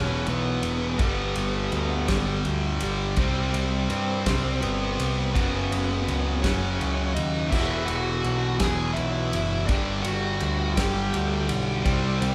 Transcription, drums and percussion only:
0.27 ride medium
0.63 ride medium
0.99 kick loud
0.99 ride medium
1.36 ride medium
1.72 ride medium
2.08 kick medium
2.08 snare loud
2.08 ride medium
2.45 ride medium
2.81 ride medium
3.16 kick loud
3.16 ride medium
3.54 ride medium
3.90 ride medium
4.26 kick medium
4.26 snare loud
4.26 ride loud
4.62 ride medium
5.00 ride medium
5.36 kick loud
5.36 ride loud
5.72 ride medium
6.08 ride medium
6.44 kick medium
6.44 snare loud
6.44 ride medium
6.81 ride medium
7.16 ride medium
7.52 kick loud
7.52 crash medium
7.88 ride medium
8.24 ride medium
8.60 kick medium
8.60 snare loud
8.60 ride loud
8.96 ride medium
9.33 ride medium
9.69 kick loud
9.69 ride loud
10.05 ride medium
10.40 ride medium
10.77 kick medium
10.77 snare loud
10.77 ride loud
11.14 ride medium
11.49 ride medium
11.86 kick loud
11.86 ride medium
12.22 ride medium

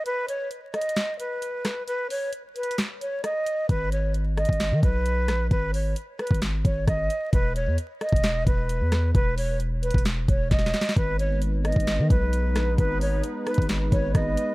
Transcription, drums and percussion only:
0.06 closed hi-hat medium
0.29 closed hi-hat medium
0.51 closed hi-hat medium
0.74 cross-stick medium
0.74 closed hi-hat soft
0.81 closed hi-hat medium
0.89 closed hi-hat medium
0.96 snare loud
0.96 closed hi-hat medium
1.20 closed hi-hat medium
1.42 closed hi-hat medium
1.65 cross-stick medium
1.65 snare medium
1.65 closed hi-hat medium
1.88 closed hi-hat medium
2.10 open hi-hat medium
2.33 closed hi-hat medium
2.56 closed hi-hat medium
2.63 closed hi-hat medium
2.71 closed hi-hat medium
2.78 snare loud
2.78 closed hi-hat medium
3.01 closed hi-hat medium
3.24 cross-stick medium
3.24 closed hi-hat medium
3.46 closed hi-hat medium
3.69 kick loud
3.69 closed hi-hat medium
3.92 closed hi-hat medium
4.14 closed hi-hat medium
4.37 cross-stick medium
4.37 closed hi-hat soft
4.45 kick medium
4.45 closed hi-hat medium
4.53 closed hi-hat medium
4.60 snare loud
4.60 closed hi-hat medium
4.83 kick loud
4.83 closed hi-hat medium
5.06 closed hi-hat medium
5.28 cross-stick medium
5.28 snare medium
5.28 closed hi-hat medium
5.51 kick loud
5.51 closed hi-hat medium
5.74 open hi-hat medium
5.96 closed hi-hat medium
6.19 cross-stick medium
6.19 closed hi-hat soft
6.27 kick medium
6.27 closed hi-hat medium
6.34 closed hi-hat medium
6.42 snare loud
6.42 closed hi-hat medium
6.65 kick loud
6.65 closed hi-hat medium
6.87 kick medium
6.87 cross-stick medium
6.87 closed hi-hat medium
7.10 closed hi-hat medium
7.33 kick loud
7.33 closed hi-hat medium
7.56 closed hi-hat medium
7.78 closed hi-hat medium
8.01 cross-stick medium
8.01 closed hi-hat soft
8.09 kick medium
8.09 closed hi-hat medium
8.16 closed hi-hat medium
8.23 snare loud
8.23 closed hi-hat medium
8.47 kick medium
8.47 closed hi-hat medium
8.69 closed hi-hat medium
8.92 cross-stick medium
8.92 snare medium
8.92 closed hi-hat medium
9.15 kick loud
9.15 closed hi-hat medium
9.38 open hi-hat medium
9.60 closed hi-hat medium
9.83 closed hi-hat medium
9.90 kick medium
9.90 closed hi-hat medium
9.98 closed hi-hat medium
10.05 snare loud
10.05 closed hi-hat medium
10.28 kick loud
10.28 closed hi-hat medium
10.51 kick loud
10.51 snare medium
10.51 closed hi-hat medium
10.59 snare medium
10.66 snare medium
10.74 snare medium
10.74 closed hi-hat medium
10.81 snare loud
10.89 snare loud
10.97 kick loud
10.97 closed hi-hat medium
11.19 closed hi-hat medium
11.42 closed hi-hat medium
11.65 cross-stick medium
11.65 closed hi-hat soft
11.72 kick medium
11.72 closed hi-hat medium
11.80 closed hi-hat medium
11.87 snare loud
11.87 closed hi-hat medium
12.10 kick loud
12.10 closed hi-hat medium
12.33 closed hi-hat medium
12.56 cross-stick medium
12.56 snare medium
12.56 closed hi-hat medium
12.78 kick loud
12.78 closed hi-hat medium
13.01 open hi-hat medium
13.24 closed hi-hat medium
13.47 cross-stick medium
13.47 closed hi-hat soft
13.54 kick medium
13.54 closed hi-hat medium
13.62 closed hi-hat medium
13.69 snare loud
13.69 closed hi-hat medium
13.92 kick loud
13.92 closed hi-hat medium
14.15 kick loud
14.15 cross-stick medium
14.15 closed hi-hat medium
14.37 closed hi-hat medium

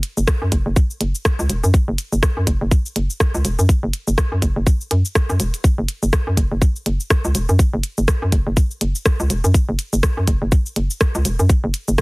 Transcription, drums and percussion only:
0.03 closed hi-hat loud
0.03 shaker soft
0.17 shaker soft
0.28 kick loud
0.28 cross-stick loud
0.28 shaker medium
0.52 kick medium
0.52 closed hi-hat loud
0.52 shaker soft
0.76 kick loud
0.76 shaker medium
0.90 shaker soft
1.01 closed hi-hat medium
1.15 shaker soft
1.25 kick loud
1.25 cross-stick loud
1.25 shaker soft
1.39 shaker soft
1.50 closed hi-hat loud
1.50 shaker medium
1.64 shaker soft
1.74 kick loud
1.74 shaker medium
1.98 closed hi-hat loud
1.98 shaker soft
2.12 shaker soft
2.23 kick loud
2.23 cross-stick medium
2.23 shaker medium
2.47 kick medium
2.47 closed hi-hat loud
2.47 shaker soft
2.71 kick loud
2.71 shaker medium
2.86 shaker soft
2.96 closed hi-hat loud
3.10 shaker soft
3.20 kick loud
3.20 cross-stick medium
3.20 shaker soft
3.34 shaker soft
3.45 closed hi-hat loud
3.45 shaker medium
3.59 shaker soft
3.69 kick loud
3.69 shaker medium
3.93 closed hi-hat loud
3.93 shaker soft
4.08 shaker soft
4.18 kick loud
4.18 cross-stick medium
4.18 shaker medium
4.42 kick medium
4.42 closed hi-hat loud
4.42 shaker soft
4.67 kick loud
4.67 shaker soft
4.81 shaker soft
4.91 closed hi-hat loud
5.05 shaker soft
5.15 kick loud
5.15 cross-stick medium
5.15 shaker soft
5.30 shaker soft
5.40 closed hi-hat loud
5.40 shaker medium
5.54 closed hi-hat soft
5.54 shaker soft
5.64 kick loud
5.64 shaker soft
5.88 closed hi-hat medium
5.88 shaker soft
6.03 shaker soft
6.13 kick loud
6.13 cross-stick medium
6.13 shaker medium
6.37 kick medium
6.37 closed hi-hat medium
6.37 shaker soft
6.62 kick loud
6.62 shaker soft
6.76 shaker soft
6.86 closed hi-hat medium
7.00 shaker soft
7.10 kick loud
7.10 cross-stick medium
7.10 shaker soft
7.25 shaker soft
7.35 closed hi-hat loud
7.35 shaker medium
7.49 shaker soft
7.59 kick loud
7.59 shaker medium
7.83 closed hi-hat medium
7.83 shaker soft
7.98 shaker soft
8.08 kick loud
8.08 cross-stick medium
8.08 shaker medium
8.32 kick medium
8.32 closed hi-hat medium
8.32 shaker soft
8.57 kick loud
8.57 shaker medium
8.71 shaker soft
8.81 closed hi-hat medium
8.95 shaker soft
9.06 kick loud
9.06 cross-stick medium
9.06 shaker soft
9.20 shaker soft
9.30 closed hi-hat medium
9.30 shaker medium
9.44 shaker soft
9.54 kick loud
9.54 shaker medium
9.79 closed hi-hat medium
9.79 shaker soft
9.93 shaker soft
10.03 kick loud
10.03 cross-stick medium
10.03 shaker medium
10.28 kick medium
10.28 closed hi-hat medium
10.28 shaker soft
10.52 kick loud
10.52 shaker medium
10.66 shaker soft
10.76 closed hi-hat medium
10.90 shaker soft
11.01 kick loud
11.01 cross-stick medium
11.01 shaker medium
11.15 shaker soft
11.25 closed hi-hat medium
11.25 shaker medium
11.39 shaker soft
11.49 kick loud
11.49 shaker medium
11.74 closed hi-hat medium
11.74 shaker soft
11.88 shaker soft
11.98 kick loud
11.98 cross-stick medium
11.98 shaker medium

